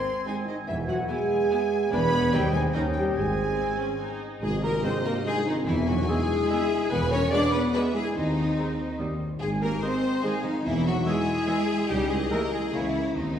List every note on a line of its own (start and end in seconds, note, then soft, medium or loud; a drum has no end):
0.00 0.25 C4 medium
0.00 0.63 C4 medium
0.00 0.25 C5 medium
0.00 1.88 G#5 medium
0.00 0.25 C6 medium
0.00 0.26 C6 medium
0.24 0.46 G#3 medium
0.24 0.34 C4 medium
0.24 0.35 D#4 medium
0.24 0.36 G#4 loud
0.24 0.32 G#5 medium
0.24 0.47 G#5 medium
0.24 0.35 G#5 medium
0.45 0.54 D#3 medium
0.45 0.54 D#4 medium
0.45 0.52 D#5 medium
0.45 0.56 D#5 medium
0.67 1.02 E1 medium
0.67 1.02 E2 medium
0.67 0.76 E3 medium
0.67 1.93 B3 medium
0.67 0.77 E4 medium
0.67 0.73 E5 medium
0.67 2.03 E5 medium
0.67 0.76 E5 medium
0.87 0.96 F#3 medium
0.87 0.97 F#4 loud
0.87 1.08 F#5 medium
0.87 0.97 F#5 medium
1.08 1.90 G#3 medium
1.08 1.17 B3 medium
1.08 1.17 E4 medium
1.08 1.90 G#4 loud
1.08 1.16 G#5 medium
1.08 1.92 G#5 loud
1.08 1.90 G#5 medium
1.50 1.59 B3 medium
1.50 1.59 E4 medium
1.50 1.58 G#5 medium
1.91 2.26 E1 loud
1.91 2.26 E2 medium
1.91 2.32 B3 loud
1.91 2.00 B3 medium
1.91 2.35 D4 medium
1.91 2.00 D4 medium
1.91 2.33 B4 loud
1.91 2.76 G#5 medium
1.91 2.01 G#5 medium
1.91 2.32 B5 loud
1.91 2.33 B5 loud
2.32 2.68 D#2 medium
2.32 2.68 D#2 loud
2.32 2.54 G3 loud
2.32 2.42 C4 medium
2.32 2.76 C4 medium
2.32 2.41 D#4 medium
2.32 2.42 G4 loud
2.32 4.17 D#5 medium
2.32 2.54 G5 loud
2.32 2.55 G5 loud
2.32 2.40 G#5 medium
2.53 2.75 G#3 medium
2.53 2.64 G#4 medium
2.53 2.61 G#5 medium
2.53 2.60 G#5 medium
2.73 3.09 D#2 medium
2.73 2.82 D#3 medium
2.73 2.82 C#4 medium
2.73 3.16 C#4 medium
2.73 2.84 D#4 loud
2.73 2.83 D#4 medium
2.73 2.82 D#5 medium
2.73 2.81 D#5 medium
2.73 2.81 G5 medium
2.73 3.18 G5 medium
2.94 3.16 G3 medium
2.94 3.17 G4 loud
2.94 3.02 G5 medium
3.15 3.51 G#1 medium
3.15 4.19 G#3 medium
3.15 4.19 C4 medium
3.15 4.22 G#4 loud
3.15 4.19 G#5 medium
3.15 4.22 G#5 medium
3.58 3.78 C4 medium
3.58 3.66 G#5 medium
3.79 4.00 C#4 medium
3.99 4.41 D#4 medium
3.99 4.08 G#5 medium
4.40 4.77 G#1 medium
4.40 4.50 G#3 loud
4.40 4.62 G#3 loud
4.40 4.62 D#4 medium
4.40 4.65 G#4 medium
4.40 4.62 G#4 loud
4.40 5.62 D#5 medium
4.40 4.48 G#5 medium
4.40 tam-tam medium
4.62 4.71 A#3 medium
4.62 4.84 A#3 medium
4.62 4.82 G4 medium
4.62 4.84 A#4 medium
4.62 4.84 A#4 loud
4.62 4.68 A#5 medium
4.84 4.92 G#3 medium
4.84 4.99 G#3 medium
4.84 4.92 C4 medium
4.84 5.05 C4 medium
4.84 4.94 C4 medium
4.84 5.04 G#4 loud
4.84 4.99 C5 medium
4.84 4.93 C5 loud
4.84 5.05 C5 loud
4.84 4.90 C6 medium
5.05 5.15 A#3 medium
5.05 5.26 A#3 medium
5.05 5.24 G4 medium
5.05 5.13 A#4 medium
5.05 5.16 A#4 medium
5.05 5.12 A#5 medium
5.25 5.34 G#3 medium
5.25 5.41 G#3 medium
5.25 5.36 G#3 medium
5.25 5.47 G#3 medium
5.25 5.35 C4 medium
5.25 5.46 D#4 medium
5.25 5.46 G#4 loud
5.25 5.36 G#4 medium
5.25 5.41 C5 medium
5.25 5.31 G#5 medium
5.46 5.55 D#3 medium
5.46 5.67 D#3 medium
5.46 5.66 C4 medium
5.46 5.56 D#4 medium
5.46 5.55 D#4 medium
5.46 5.54 D#5 medium
5.65 6.01 E1 medium
5.65 6.02 E2 medium
5.65 5.76 E3 medium
5.65 5.75 E4 loud
5.65 5.77 E4 loud
5.65 5.88 E5 loud
5.65 6.47 G#5 loud
5.69 5.89 E3 loud
5.69 5.88 B3 loud
5.87 5.97 F#3 medium
5.87 5.98 F#3 loud
5.87 6.08 D#4 medium
5.87 6.08 F#4 medium
5.87 5.93 F#4 loud
5.87 6.09 F#5 medium
6.02 6.09 A#4 medium
6.08 6.17 G#3 medium
6.08 6.90 G#3 loud
6.08 6.24 G#3 medium
6.08 6.91 G#3 loud
6.08 6.17 B3 medium
6.08 6.88 E4 loud
6.08 6.92 G#4 loud
6.08 6.24 E5 medium
6.08 6.90 G#5 loud
6.48 6.65 G#3 medium
6.48 6.58 G#3 medium
6.48 6.59 B3 medium
6.48 6.90 E5 loud
6.48 6.65 E5 medium
6.90 7.25 E1 loud
6.90 7.26 E2 loud
6.90 7.00 B3 loud
6.90 7.10 G#4 loud
6.90 7.13 B4 loud
6.90 7.12 B4 loud
6.90 7.31 G#5 loud
6.90 7.11 B5 loud
7.11 7.20 C#4 loud
7.11 7.33 C#4 loud
7.11 7.30 A#4 loud
7.11 7.30 C#5 loud
7.11 7.32 C#5 loud
7.11 7.32 C#6 loud
7.30 7.48 G#3 medium
7.30 7.41 G#3 medium
7.30 7.53 D4 loud
7.30 7.41 D4 medium
7.30 7.43 D4 loud
7.30 7.51 B4 loud
7.30 7.40 D5 loud
7.30 7.47 D5 medium
7.30 7.53 D5 loud
7.30 7.74 F#5 loud
7.30 7.53 D6 loud
7.52 7.72 B3 loud
7.52 7.73 B3 loud
7.52 7.72 G#4 loud
7.52 7.62 B4 loud
7.52 7.61 B4 loud
7.52 7.72 B5 loud
7.72 7.82 G#3 medium
7.72 7.89 G#3 medium
7.72 7.83 B3 loud
7.72 7.94 B3 loud
7.72 7.82 D4 medium
7.72 7.93 G#4 loud
7.72 7.94 B4 loud
7.72 7.82 B4 loud
7.72 7.88 D5 medium
7.72 8.16 E5 loud
7.72 7.80 B5 medium
7.93 8.03 G#3 medium
7.93 8.02 G#3 medium
7.93 8.13 E4 medium
7.93 8.15 G#4 loud
7.93 8.04 G#4 medium
7.93 8.15 G#5 medium
8.15 8.50 D#2 medium
8.15 8.97 D#3 medium
8.15 8.98 D#3 medium
8.15 8.95 C4 medium
8.15 8.97 D#4 medium
8.15 8.98 D#4 loud
8.15 9.18 C5 medium
8.15 8.98 D#5 medium
8.57 8.66 G#3 medium
8.57 8.73 G#3 medium
8.57 8.65 C4 medium
8.57 8.72 C5 medium
8.99 9.34 D#2 medium
8.99 9.07 G3 medium
8.99 9.15 G3 medium
8.99 9.07 A#3 medium
8.99 9.14 D#5 medium
9.40 9.75 G#1 medium
9.40 9.76 G#1 medium
9.40 9.50 G#3 medium
9.40 9.61 G#3 medium
9.40 9.60 D#4 medium
9.40 9.50 G#4 medium
9.40 9.49 G#4 loud
9.40 9.60 G#5 medium
9.61 9.70 A#3 medium
9.61 9.83 A#3 medium
9.61 9.81 G4 medium
9.61 9.71 A#4 medium
9.61 9.82 A#4 loud
9.61 9.82 A#5 medium
9.81 9.90 D#3 medium
9.81 9.97 G#3 medium
9.81 9.90 G#3 medium
9.81 10.23 C4 medium
9.81 10.24 C4 medium
9.81 10.21 G#4 medium
9.81 10.24 C5 loud
9.81 10.23 C5 loud
9.81 10.21 D#5 medium
9.81 9.98 D#5 medium
9.81 10.23 C6 loud
10.22 10.33 D#3 medium
10.22 10.33 G#3 medium
10.22 10.39 G#3 medium
10.22 10.32 G#3 medium
10.22 10.42 D#4 medium
10.22 10.45 G#4 loud
10.22 10.34 G#4 medium
10.22 10.40 D#5 medium
10.22 10.65 F5 loud
10.22 10.45 G#5 medium
10.42 10.65 D#3 medium
10.42 10.52 D#3 medium
10.42 10.62 C4 medium
10.42 10.67 D#4 medium
10.42 10.66 D#4 loud
10.42 10.50 D#5 medium
10.63 11.00 E1 loud
10.63 11.00 E2 medium
10.63 10.74 E3 loud
10.63 10.86 E3 medium
10.63 10.84 B3 medium
10.63 10.86 E4 loud
10.63 10.87 E4 loud
10.63 10.71 E5 medium
10.63 11.88 E5 loud
10.85 10.94 F#3 medium
10.85 10.96 F#3 loud
10.85 11.05 D#4 medium
10.85 10.94 F#4 loud
10.85 11.09 F#4 loud
10.85 11.06 F#5 loud
11.04 11.15 E3 medium
11.04 11.15 G#3 medium
11.04 11.22 G#3 medium
11.04 11.88 G#3 loud
11.04 11.84 E4 loud
11.04 11.88 G#4 loud
11.04 11.21 E5 medium
11.04 11.87 G#5 loud
11.08 11.89 G#3 loud
11.08 11.88 G#4 loud
11.48 11.56 E3 medium
11.48 11.56 G#3 medium
11.48 11.63 G#3 medium
11.48 11.63 E5 medium
11.88 12.24 C#2 loud
11.88 12.24 C#2 medium
11.88 11.99 G3 loud
11.88 12.10 G3 loud
11.88 12.09 D#4 loud
11.88 12.09 G4 loud
11.88 12.10 G4 loud
11.88 12.71 D#5 loud
11.88 11.94 G5 loud
12.09 12.19 G#3 medium
12.09 12.21 G#3 medium
12.09 12.30 E4 medium
12.09 12.30 G#4 medium
12.09 12.31 G#4 loud
12.09 12.16 G#5 medium
12.30 12.40 E3 medium
12.30 12.46 G#3 medium
12.30 12.39 G#3 medium
12.30 12.41 A#3 loud
12.30 12.40 A#3 medium
12.30 12.51 G4 loud
12.30 12.40 A#4 loud
12.30 12.52 A#4 loud
12.30 12.47 E5 medium
12.30 12.36 A#5 loud
12.52 12.74 G#3 medium
12.52 12.63 G#3 medium
12.52 12.72 E4 medium
12.52 12.63 G#4 medium
12.52 12.74 G#4 loud
12.52 12.58 G#5 medium
12.73 13.08 C#2 medium
12.73 13.09 C#2 medium
12.73 13.15 E3 medium
12.73 13.16 E3 medium
12.73 12.81 G#3 medium
12.73 12.81 A#3 medium
12.73 12.90 A#3 medium
12.73 13.13 C#4 medium
12.73 13.16 E4 medium
12.73 13.17 E4 loud
12.73 13.16 C#5 medium
12.73 13.15 E5 medium
12.73 12.89 G#5 medium
13.15 13.39 D#2 medium
13.15 13.39 D#3 medium
13.15 13.39 C4 medium
13.15 13.39 D#4 medium
13.15 13.39 C5 medium
13.15 13.39 D#5 medium